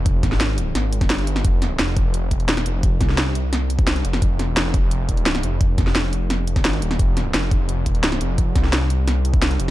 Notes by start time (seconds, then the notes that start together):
Already playing: F1
0.06 kick, closed hi-hat
0.23 G#1, kick, snare, closed hi-hat
0.32 snare
0.41 snare, closed hi-hat
0.58 closed hi-hat
0.75 G#1, snare, closed hi-hat
0.93 closed hi-hat
1.01 kick, snare, closed hi-hat
1.10 G1, snare, closed hi-hat
1.19 closed hi-hat
1.27 closed hi-hat
1.36 snare
1.45 F1, kick, closed hi-hat
1.62 snare, closed hi-hat
1.79 F1, snare, closed hi-hat
1.97 kick, closed hi-hat
2.14 closed hi-hat
2.31 kick, closed hi-hat
2.39 E1, closed hi-hat
2.49 snare, closed hi-hat
2.57 snare, closed hi-hat
2.66 F1, closed hi-hat
2.83 kick, closed hi-hat
3.01 C2, kick, snare, closed hi-hat
3.09 snare
3.18 snare, closed hi-hat
3.35 closed hi-hat
3.53 snare, closed hi-hat
3.70 closed hi-hat
3.79 kick, closed hi-hat
3.87 C2, snare, closed hi-hat
3.96 closed hi-hat
4.05 F1, closed hi-hat
4.13 snare
4.22 F1, kick, closed hi-hat
4.39 snare, closed hi-hat
4.57 F1, snare, closed hi-hat
4.74 kick, closed hi-hat
4.91 closed hi-hat
5.09 kick, closed hi-hat
5.17 closed hi-hat
5.26 snare, closed hi-hat
5.35 snare, closed hi-hat
5.43 F1, closed hi-hat
5.61 kick, closed hi-hat
5.78 F1, kick, snare, closed hi-hat
5.87 snare
5.95 snare, closed hi-hat
6.13 closed hi-hat
6.30 snare, closed hi-hat
6.47 closed hi-hat
6.56 kick, snare, closed hi-hat
6.65 G#1, snare, closed hi-hat
6.73 closed hi-hat
6.82 D#1, closed hi-hat
6.91 snare
6.99 F1, kick, closed hi-hat
7.17 snare, closed hi-hat
7.34 F1, snare, closed hi-hat
7.51 kick, closed hi-hat
7.69 closed hi-hat
7.86 kick, closed hi-hat
7.95 closed hi-hat
8.04 snare, closed hi-hat
8.12 snare, closed hi-hat
8.21 F1, closed hi-hat
8.38 kick, closed hi-hat
8.55 C2, kick, snare, closed hi-hat
8.64 snare
8.73 snare, closed hi-hat
8.90 closed hi-hat
9.08 snare, closed hi-hat
9.25 closed hi-hat
9.34 kick, closed hi-hat
9.42 C2, snare, closed hi-hat
9.51 closed hi-hat
9.60 F1, closed hi-hat